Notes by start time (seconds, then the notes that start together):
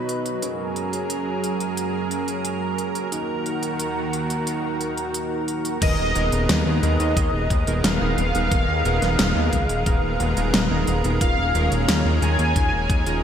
Already playing: B2 F#3 B3 D#4 F#4 B4
0.09 closed hi-hat
0.26 closed hi-hat
0.42 F#2 F#3 C#4 F#4 G#4 A#4, closed hi-hat
0.76 closed hi-hat
0.93 closed hi-hat
1.10 closed hi-hat
1.44 closed hi-hat
1.60 closed hi-hat
1.77 closed hi-hat
2.11 closed hi-hat
2.28 closed hi-hat
2.45 closed hi-hat
2.78 closed hi-hat
2.95 closed hi-hat
3.12 D#2 D#3 A#3 D#4 F#4 A#4, closed hi-hat
3.46 closed hi-hat
3.63 closed hi-hat
3.79 closed hi-hat
4.13 closed hi-hat
4.30 closed hi-hat
4.47 closed hi-hat
4.81 closed hi-hat
4.97 closed hi-hat
5.14 closed hi-hat
5.48 closed hi-hat
5.65 closed hi-hat
5.82 D#1 D#3 G#3 B3 D#4 G#4 A#4 D#5, kick, closed hi-hat, crash
5.99 D#1
6.15 D#1 D#3 B3 D#4 G#4 A#4, closed hi-hat
6.32 D#1, closed hi-hat
6.49 D#2, snare, closed hi-hat
6.66 D#2 D#3 B3 D#4 G#4 A#4
6.83 D#2 D#3 B3 D#4 G#4 A#4 D#5, closed hi-hat
7.00 D#2, closed hi-hat
7.17 D#2 D#3 B3 D#4 G#4 A#4, kick, closed hi-hat
7.33 D#1
7.50 D#2, kick, closed hi-hat
7.67 D#1 D#3 B3 D#4 G#4 A#4, closed hi-hat
7.84 D#1 F5, snare, closed hi-hat
8.01 D#1 D#3 B3 D#4 G#4 A#4
8.18 D#1, closed hi-hat
8.35 D#1 D#3 B3 D#4 G#4 A#4, closed hi-hat
8.51 D#1 D#3 B3 D#4 G#4 A#4, kick, closed hi-hat
8.68 D#2
8.85 D#1 D#3 B3 D#4 G#4 A#4, closed hi-hat
9.02 D#1, snare, closed hi-hat
9.19 D#1, snare, closed hi-hat
9.36 D#2 D#3 B3 D#4 G#4 A#4
9.52 C#2 D#3 B3 D#4 G#4 A#4, kick, closed hi-hat
9.69 D#1, closed hi-hat
9.86 D#1 D#3 B3 D#4 G#4 A#4, kick, closed hi-hat
10.03 D#1
10.20 D#1, closed hi-hat
10.37 D#1 D#3 B3 D#4 G#4 A#4, closed hi-hat
10.54 D#1, snare, closed hi-hat
10.70 D#1 D#3 B3 D#4 G#4 A#4
10.87 D#1, closed hi-hat
11.04 D#1 B3 D#4 G#4 A#4, closed hi-hat
11.21 D#1 D#3 C#4 F4 G#4 A#4 F5, kick, closed hi-hat
11.38 D#1
11.55 D#1 D#3 C#4 F4 G#4 A#4, closed hi-hat
11.72 D#1, closed hi-hat
11.88 D#2, snare, closed hi-hat
12.05 D#2 D#3 C#4 F4 G#4 A#4
12.22 D#2 D#3 C#4 F4 G#4 A#4 G#5, closed hi-hat
12.39 D#2, closed hi-hat
12.56 D#2 D#3 C#4 F4 G#4 A#4, kick, closed hi-hat
12.73 D#1
12.90 D#2, kick, closed hi-hat
13.06 D#1 D#3 C#4 F4 G#4 A#4, closed hi-hat